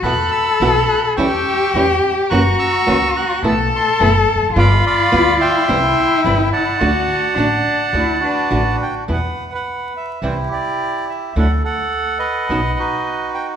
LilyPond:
<<
  \new Staff \with { instrumentName = "Bandoneon" } { \time 4/4 \key d \mixolydian \tempo 4 = 106 << { fis'''8 e'''4 fis'''8 e'''4 cis'''8 r8 | fis'''8 e'''4 fis'''8 e'''8 c'''8 b''8 r8 | d'''8 b''4 c'''4. b''8 a''8~ | a''2~ a''8 b'4 g''8 |
\key e \minor fis''8. fis''8. e''8 c''8 d''4 e''8 | fis''8 fis''4 fis''4 b'4 g''8 | } \\ { b''8 b''4. <g'' cis'''>2 | <ais'' cis'''>8 <ais'' cis'''>4. a''2 | <f'' b''>8 <d'' f''>4 <e'' g''>2 <d'' fis''>8~ | <d'' fis''>2~ <d'' fis''>8 <d' fis'>4. |
b'8. b'4~ b'16 <e' g'>8 g'4. | a'8 a'4 <b' dis''>4 <dis' fis'>4. | } >> }
  \new Staff \with { instrumentName = "Cello" } { \time 4/4 \key d \mixolydian a'2 g'2 | fis'2 a'2 | f'2 e'2 | fis'4 d'4 e'8 d'4 r8 |
\key e \minor r1 | r1 | }
  \new Staff \with { instrumentName = "Nylon-string guitar" } { \time 4/4 \key d \mixolydian <b, e b e' fis'>8 r8 <b, e b e' fis'>8 r8 <e g cis' e'>8 r8 <e g cis' e'>8 r8 | <cis e ais cis' fis'>8 r8 <cis e ais cis' fis'>8 r8 <b, e a b e'>8 r8 <b, e a b e'>8 r8 | <g b f'>8 r8 <g b f'>8 r8 <c e g c' e'>8 r8 <c e g c' e'>8 r8 | <d a d' fis'>8 r8 <d a d' fis'>8 r8 <d a d' fis'>8 r8 <d a d' fis'>8 r8 |
\key e \minor <b, e g b e'>8 r4. <c e g c' e'>8 r4. | <d fis a d' e'>8 r4. <b, fis b dis' fis'>8 r4. | }
  \new Staff \with { instrumentName = "Upright bass" } { \clef bass \time 4/4 \key d \mixolydian e,16. r8 r32 b,,16. r8 r32 e,16. r8 r32 e,16. r8 r32 | fis,,16. r8 r32 cis,16. r8 r32 b,,16. r8 r32 fis,,16. r16 e,,32 f,,32 fis,,32 | g,,16. r8 r32 d,16. r8 r32 c,16. r8 r32 g,,16. r8 r32 | d,16. r8 r32 a,,16. r8 r32 d,16. r8 r32 a,,16. r8 r32 |
\key e \minor e,16. r4. r32 c,16. r4. r32 | d,16. r4. r32 b,,16. r4. r32 | }
>>